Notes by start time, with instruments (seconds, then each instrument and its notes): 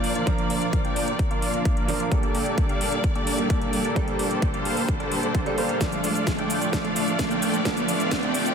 Already playing: grand piano F3 A#3 D4 A#4 C5, string section F3 A#3 D4 A#4 D5, supersaw synth A#3 D4 F4 D5 F5, riser
0.04 open hi-hat
0.15 supersaw synth A#3 D4 F4 D5 F5, closed hi-hat
0.26 grand piano F3 A#3 D4 A#4, supersaw synth A#3 D4 F4 D5 F5, kick, closed hi-hat
0.38 closed hi-hat
0.50 supersaw synth A#3 D4 F4 D5 F5, open hi-hat
0.62 closed hi-hat
0.73 kick, closed hi-hat
0.85 supersaw synth A#3 D4 F4 D5 G5, closed hi-hat
0.96 open hi-hat
1.08 closed hi-hat
1.19 kick, closed hi-hat
1.31 supersaw synth A#3 D4 F4 D5 F5, closed hi-hat
1.42 open hi-hat
1.54 closed hi-hat
1.65 supersaw synth A#3 D4 F4 D5 F5, kick, closed hi-hat
1.77 closed hi-hat
1.88 grand piano F3 A#3 D4 A#4, open hi-hat
2.00 supersaw synth A#3 D4 F4 D5 F5, closed hi-hat
2.10 grand piano G3 A#3 D4 A4, string section G3 A4 D5, supersaw synth A#3 D4 G4 A4 D5, kick, closed hi-hat
2.23 closed hi-hat
2.35 supersaw synth A#3 D4 G4 A4 D5, open hi-hat
2.46 closed hi-hat
2.58 kick, closed hi-hat
2.69 supersaw synth A#3 D4 G4 A4 F5, closed hi-hat
2.81 open hi-hat
2.92 closed hi-hat
3.04 kick, closed hi-hat
3.15 supersaw synth A#3 D4 G4 A4 D5, closed hi-hat
3.27 open hi-hat
3.37 grand piano G3 A#3 D4, closed hi-hat
3.50 supersaw synth A#3 D4 G4 A4 D5, kick, closed hi-hat
3.62 closed hi-hat
3.73 open hi-hat
3.85 supersaw synth A#3 D4 G4 A4 D5, closed hi-hat
3.95 grand piano G3 A#3 D4 A4, supersaw synth A#3 D4 G4 A4 D5, string section C5, kick, closed hi-hat
4.08 closed hi-hat
4.19 supersaw synth A#3 D4 G4 A4 D5, open hi-hat
4.31 closed hi-hat
4.42 kick, closed hi-hat
4.54 supersaw synth A#3 D4 G4 A4 F5, closed hi-hat
4.65 open hi-hat
4.77 open hi-hat
4.88 kick, closed hi-hat
5.00 supersaw synth A#3 D4 G4 A4 D5, closed hi-hat
5.12 open hi-hat
5.23 closed hi-hat
5.35 supersaw synth A#3 D4 G4 A4 C5, kick, closed hi-hat
5.46 grand piano G3 A#3 D4 A4, closed hi-hat
5.57 grand piano G3 A#3 D4 C5, supersaw synth A#3 D4 G4 A4 F5, open hi-hat
5.69 closed hi-hat
5.79 grand piano F3 A3 D4, string section F3 A3 D5, supersaw synth A3 D4 F4 D5 F5, kick, snare, closed hi-hat, shaker
5.92 closed hi-hat, shaker
6.04 supersaw synth A3 D4 F4 D5 F5, open hi-hat, shaker
6.15 closed hi-hat, shaker
6.27 kick, snare, closed hi-hat, shaker
6.38 supersaw synth A3 D4 F4 D5 G5, closed hi-hat
6.50 open hi-hat, shaker
6.61 closed hi-hat, shaker
6.72 grand piano F3 A3 D4 A4, supersaw synth A3 D4 F4 D5 F5, kick, snare, closed hi-hat, shaker
6.85 closed hi-hat
6.96 supersaw synth A3 D4 F4 D5 F5, open hi-hat, shaker
7.08 closed hi-hat, shaker
7.19 kick, snare, closed hi-hat, shaker
7.31 supersaw synth A3 D4 F4 D5 G5, closed hi-hat, shaker
7.42 open hi-hat, shaker
7.54 closed hi-hat, shaker
7.64 grand piano F3 A3 D4 A4, supersaw synth A3 D4 F4 D5 F5, string section G4, kick, snare, closed hi-hat, shaker
7.77 closed hi-hat, shaker
7.88 supersaw synth A3 D4 F4 D5 F5, open hi-hat, shaker
8.00 closed hi-hat, shaker
8.11 kick, snare, closed hi-hat, shaker
8.23 supersaw synth A3 D4 F4 D5 G5, closed hi-hat
8.34 open hi-hat, shaker
8.46 closed hi-hat, shaker